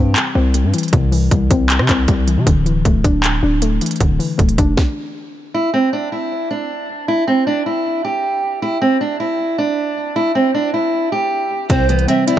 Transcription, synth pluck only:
0, 0, Header, 1, 2, 480
1, 0, Start_track
1, 0, Tempo, 384615
1, 1159, Time_signature, 4, 2, 24, 8
1, 15465, End_track
2, 0, Start_track
2, 0, Title_t, "Synth pluck"
2, 0, Program_c, 0, 84
2, 0, Note_on_c, 0, 48, 98
2, 0, Note_on_c, 0, 52, 79
2, 0, Note_on_c, 0, 55, 83
2, 0, Note_on_c, 0, 60, 94
2, 426, Note_off_c, 0, 60, 0
2, 438, Note_off_c, 0, 48, 0
2, 441, Note_on_c, 0, 60, 83
2, 668, Note_off_c, 0, 55, 0
2, 683, Note_off_c, 0, 52, 0
2, 683, Note_on_c, 0, 55, 85
2, 921, Note_on_c, 0, 52, 77
2, 1166, Note_on_c, 0, 48, 96
2, 1382, Note_off_c, 0, 52, 0
2, 1397, Note_on_c, 0, 52, 78
2, 1624, Note_off_c, 0, 55, 0
2, 1639, Note_on_c, 0, 55, 78
2, 1640, Note_off_c, 0, 60, 0
2, 1882, Note_on_c, 0, 60, 100
2, 2349, Note_off_c, 0, 60, 0
2, 2363, Note_off_c, 0, 48, 0
2, 2364, Note_on_c, 0, 60, 80
2, 2587, Note_off_c, 0, 55, 0
2, 2598, Note_off_c, 0, 52, 0
2, 2602, Note_on_c, 0, 55, 101
2, 2839, Note_on_c, 0, 52, 76
2, 3073, Note_on_c, 0, 50, 90
2, 3079, Note_off_c, 0, 52, 0
2, 3081, Note_off_c, 0, 55, 0
2, 3082, Note_off_c, 0, 60, 0
2, 3316, Note_on_c, 0, 52, 76
2, 3566, Note_on_c, 0, 57, 79
2, 3799, Note_on_c, 0, 62, 95
2, 4261, Note_off_c, 0, 62, 0
2, 4276, Note_off_c, 0, 50, 0
2, 4276, Note_on_c, 0, 62, 95
2, 4503, Note_off_c, 0, 57, 0
2, 4518, Note_off_c, 0, 52, 0
2, 4518, Note_on_c, 0, 57, 99
2, 4764, Note_on_c, 0, 52, 78
2, 4996, Note_on_c, 0, 50, 86
2, 5219, Note_off_c, 0, 52, 0
2, 5234, Note_on_c, 0, 52, 79
2, 5452, Note_off_c, 0, 57, 0
2, 5466, Note_on_c, 0, 57, 77
2, 5478, Note_off_c, 0, 62, 0
2, 5723, Note_on_c, 0, 62, 96
2, 6198, Note_off_c, 0, 50, 0
2, 6437, Note_off_c, 0, 52, 0
2, 6673, Note_off_c, 0, 57, 0
2, 6921, Note_off_c, 0, 62, 0
2, 14598, Note_on_c, 0, 48, 94
2, 14849, Note_on_c, 0, 52, 76
2, 15073, Note_on_c, 0, 55, 85
2, 15315, Note_on_c, 0, 60, 95
2, 15465, Note_off_c, 0, 48, 0
2, 15465, Note_off_c, 0, 52, 0
2, 15465, Note_off_c, 0, 55, 0
2, 15465, Note_off_c, 0, 60, 0
2, 15465, End_track
0, 0, End_of_file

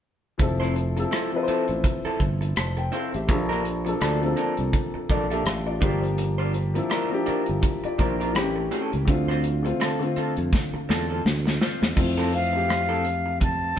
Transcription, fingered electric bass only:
0, 0, Header, 1, 3, 480
1, 0, Start_track
1, 0, Key_signature, -1, "major"
1, 0, Tempo, 723676
1, 261, Time_signature, 4, 2, 24, 8
1, 9147, End_track
2, 0, Start_track
2, 0, Title_t, "Fingered electric bass"
2, 0, Program_c, 0, 33
2, 266, Note_on_c, 0, 29, 90
2, 689, Note_off_c, 0, 29, 0
2, 1122, Note_on_c, 0, 33, 71
2, 1210, Note_off_c, 0, 33, 0
2, 1463, Note_on_c, 0, 31, 84
2, 1675, Note_off_c, 0, 31, 0
2, 1704, Note_on_c, 0, 29, 71
2, 1915, Note_off_c, 0, 29, 0
2, 2087, Note_on_c, 0, 33, 73
2, 2181, Note_off_c, 0, 33, 0
2, 2181, Note_on_c, 0, 34, 99
2, 2606, Note_off_c, 0, 34, 0
2, 2663, Note_on_c, 0, 38, 80
2, 2874, Note_off_c, 0, 38, 0
2, 3042, Note_on_c, 0, 36, 73
2, 3130, Note_off_c, 0, 36, 0
2, 3383, Note_on_c, 0, 34, 85
2, 3594, Note_off_c, 0, 34, 0
2, 3622, Note_on_c, 0, 33, 81
2, 3834, Note_off_c, 0, 33, 0
2, 3861, Note_on_c, 0, 31, 84
2, 4498, Note_off_c, 0, 31, 0
2, 4970, Note_on_c, 0, 31, 73
2, 5054, Note_off_c, 0, 31, 0
2, 5301, Note_on_c, 0, 34, 84
2, 5546, Note_off_c, 0, 34, 0
2, 5546, Note_on_c, 0, 33, 80
2, 5756, Note_off_c, 0, 33, 0
2, 5926, Note_on_c, 0, 37, 75
2, 6012, Note_off_c, 0, 37, 0
2, 6023, Note_on_c, 0, 38, 90
2, 6446, Note_off_c, 0, 38, 0
2, 6883, Note_on_c, 0, 41, 73
2, 6970, Note_off_c, 0, 41, 0
2, 7225, Note_on_c, 0, 40, 80
2, 7435, Note_off_c, 0, 40, 0
2, 7464, Note_on_c, 0, 38, 74
2, 7674, Note_off_c, 0, 38, 0
2, 7841, Note_on_c, 0, 40, 74
2, 7929, Note_off_c, 0, 40, 0
2, 7941, Note_on_c, 0, 41, 95
2, 9113, Note_off_c, 0, 41, 0
2, 9147, End_track
3, 0, Start_track
3, 0, Title_t, "Muted fingered electric bass strokes"
3, 983, Note_on_c, 9, 29, 39
3, 1049, Note_off_c, 9, 29, 0
3, 1363, Note_on_c, 9, 29, 41
3, 1429, Note_off_c, 9, 29, 0
3, 3283, Note_on_c, 9, 29, 45
3, 3350, Note_off_c, 9, 29, 0
3, 4828, Note_on_c, 9, 29, 40
3, 4894, Note_off_c, 9, 29, 0
3, 5205, Note_on_c, 9, 29, 44
3, 5271, Note_off_c, 9, 29, 0
3, 6745, Note_on_c, 9, 29, 40
3, 6812, Note_off_c, 9, 29, 0
3, 7124, Note_on_c, 9, 29, 44
3, 7190, Note_off_c, 9, 29, 0
3, 9147, End_track
0, 0, End_of_file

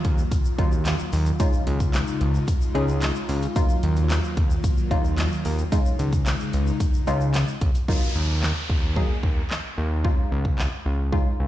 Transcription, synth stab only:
0, 0, Header, 1, 2, 480
1, 0, Start_track
1, 0, Key_signature, -6, "minor"
1, 0, Tempo, 540541
1, 1241, Time_signature, 4, 2, 24, 8
1, 10190, End_track
2, 0, Start_track
2, 0, Title_t, "Synth stab"
2, 0, Program_c, 0, 62
2, 519, Note_on_c, 0, 54, 89
2, 521, Note_on_c, 0, 58, 80
2, 522, Note_on_c, 0, 63, 80
2, 524, Note_on_c, 0, 65, 96
2, 1074, Note_off_c, 0, 54, 0
2, 1074, Note_off_c, 0, 58, 0
2, 1075, Note_off_c, 0, 63, 0
2, 1076, Note_off_c, 0, 65, 0
2, 1241, Note_on_c, 0, 56, 86
2, 1243, Note_on_c, 0, 61, 81
2, 1244, Note_on_c, 0, 63, 80
2, 1246, Note_on_c, 0, 65, 96
2, 1979, Note_off_c, 0, 56, 0
2, 1980, Note_off_c, 0, 61, 0
2, 1981, Note_off_c, 0, 63, 0
2, 1981, Note_off_c, 0, 65, 0
2, 2438, Note_on_c, 0, 56, 86
2, 2441, Note_on_c, 0, 61, 81
2, 2441, Note_on_c, 0, 63, 83
2, 2443, Note_on_c, 0, 68, 96
2, 2993, Note_off_c, 0, 56, 0
2, 2994, Note_off_c, 0, 61, 0
2, 2995, Note_off_c, 0, 63, 0
2, 2995, Note_off_c, 0, 68, 0
2, 3159, Note_on_c, 0, 54, 89
2, 3159, Note_on_c, 0, 58, 79
2, 3161, Note_on_c, 0, 63, 81
2, 3163, Note_on_c, 0, 65, 99
2, 3898, Note_off_c, 0, 54, 0
2, 3898, Note_off_c, 0, 58, 0
2, 3899, Note_off_c, 0, 63, 0
2, 3900, Note_off_c, 0, 65, 0
2, 4360, Note_on_c, 0, 54, 92
2, 4360, Note_on_c, 0, 58, 82
2, 4362, Note_on_c, 0, 63, 79
2, 4364, Note_on_c, 0, 65, 102
2, 4914, Note_off_c, 0, 54, 0
2, 4914, Note_off_c, 0, 58, 0
2, 4915, Note_off_c, 0, 63, 0
2, 4916, Note_off_c, 0, 65, 0
2, 5080, Note_on_c, 0, 56, 92
2, 5082, Note_on_c, 0, 61, 83
2, 5083, Note_on_c, 0, 63, 80
2, 5085, Note_on_c, 0, 65, 95
2, 5818, Note_off_c, 0, 56, 0
2, 5819, Note_off_c, 0, 61, 0
2, 5820, Note_off_c, 0, 63, 0
2, 5821, Note_off_c, 0, 65, 0
2, 6280, Note_on_c, 0, 56, 85
2, 6281, Note_on_c, 0, 61, 83
2, 6283, Note_on_c, 0, 63, 82
2, 6284, Note_on_c, 0, 65, 94
2, 6834, Note_off_c, 0, 56, 0
2, 6834, Note_off_c, 0, 61, 0
2, 6835, Note_off_c, 0, 63, 0
2, 6836, Note_off_c, 0, 65, 0
2, 7001, Note_on_c, 0, 54, 88
2, 7001, Note_on_c, 0, 58, 80
2, 7004, Note_on_c, 0, 63, 79
2, 7005, Note_on_c, 0, 65, 93
2, 7739, Note_off_c, 0, 54, 0
2, 7739, Note_off_c, 0, 58, 0
2, 7740, Note_off_c, 0, 63, 0
2, 7741, Note_off_c, 0, 65, 0
2, 7959, Note_on_c, 0, 54, 84
2, 7961, Note_on_c, 0, 58, 79
2, 7962, Note_on_c, 0, 63, 76
2, 7963, Note_on_c, 0, 68, 95
2, 8698, Note_off_c, 0, 54, 0
2, 8699, Note_off_c, 0, 58, 0
2, 8699, Note_off_c, 0, 63, 0
2, 8700, Note_off_c, 0, 68, 0
2, 8919, Note_on_c, 0, 56, 89
2, 8919, Note_on_c, 0, 61, 81
2, 8922, Note_on_c, 0, 63, 79
2, 8922, Note_on_c, 0, 65, 94
2, 9658, Note_off_c, 0, 56, 0
2, 9658, Note_off_c, 0, 61, 0
2, 9659, Note_off_c, 0, 63, 0
2, 9659, Note_off_c, 0, 65, 0
2, 9877, Note_on_c, 0, 56, 83
2, 9878, Note_on_c, 0, 61, 78
2, 9880, Note_on_c, 0, 63, 79
2, 9882, Note_on_c, 0, 65, 96
2, 10190, Note_off_c, 0, 56, 0
2, 10190, Note_off_c, 0, 61, 0
2, 10190, Note_off_c, 0, 63, 0
2, 10190, Note_off_c, 0, 65, 0
2, 10190, End_track
0, 0, End_of_file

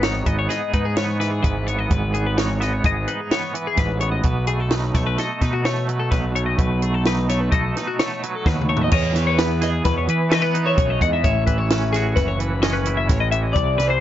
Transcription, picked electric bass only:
0, 0, Header, 1, 2, 480
1, 0, Start_track
1, 0, Key_signature, 4, "major"
1, 0, Tempo, 468750
1, 1944, Time_signature, 5, 2, 24, 8
1, 8181, Tempo, 464037
1, 14402, End_track
2, 0, Start_track
2, 0, Title_t, "Picked electric bass"
2, 0, Program_c, 0, 34
2, 0, Note_on_c, 0, 32, 98
2, 224, Note_off_c, 0, 32, 0
2, 265, Note_on_c, 0, 32, 85
2, 482, Note_off_c, 0, 32, 0
2, 756, Note_on_c, 0, 44, 82
2, 1429, Note_off_c, 0, 44, 0
2, 1474, Note_on_c, 0, 32, 78
2, 1908, Note_off_c, 0, 32, 0
2, 1947, Note_on_c, 0, 32, 99
2, 2864, Note_off_c, 0, 32, 0
2, 2908, Note_on_c, 0, 32, 90
2, 3124, Note_off_c, 0, 32, 0
2, 3870, Note_on_c, 0, 33, 79
2, 4306, Note_off_c, 0, 33, 0
2, 4340, Note_on_c, 0, 35, 98
2, 5021, Note_off_c, 0, 35, 0
2, 5064, Note_on_c, 0, 35, 92
2, 5282, Note_off_c, 0, 35, 0
2, 5547, Note_on_c, 0, 47, 89
2, 6224, Note_off_c, 0, 47, 0
2, 6264, Note_on_c, 0, 35, 76
2, 6702, Note_off_c, 0, 35, 0
2, 6741, Note_on_c, 0, 35, 101
2, 7659, Note_off_c, 0, 35, 0
2, 7700, Note_on_c, 0, 35, 86
2, 7918, Note_off_c, 0, 35, 0
2, 8665, Note_on_c, 0, 39, 82
2, 9104, Note_off_c, 0, 39, 0
2, 9144, Note_on_c, 0, 40, 96
2, 9363, Note_off_c, 0, 40, 0
2, 9371, Note_on_c, 0, 40, 82
2, 10058, Note_off_c, 0, 40, 0
2, 10112, Note_on_c, 0, 40, 82
2, 10328, Note_off_c, 0, 40, 0
2, 10341, Note_on_c, 0, 52, 88
2, 11022, Note_off_c, 0, 52, 0
2, 11064, Note_on_c, 0, 35, 91
2, 11283, Note_off_c, 0, 35, 0
2, 11310, Note_on_c, 0, 40, 98
2, 11526, Note_off_c, 0, 40, 0
2, 11548, Note_on_c, 0, 33, 94
2, 11765, Note_off_c, 0, 33, 0
2, 11784, Note_on_c, 0, 33, 76
2, 12462, Note_off_c, 0, 33, 0
2, 12503, Note_on_c, 0, 30, 80
2, 13460, Note_off_c, 0, 30, 0
2, 13460, Note_on_c, 0, 33, 85
2, 13898, Note_off_c, 0, 33, 0
2, 13940, Note_on_c, 0, 36, 102
2, 14158, Note_off_c, 0, 36, 0
2, 14180, Note_on_c, 0, 36, 80
2, 14402, Note_off_c, 0, 36, 0
2, 14402, End_track
0, 0, End_of_file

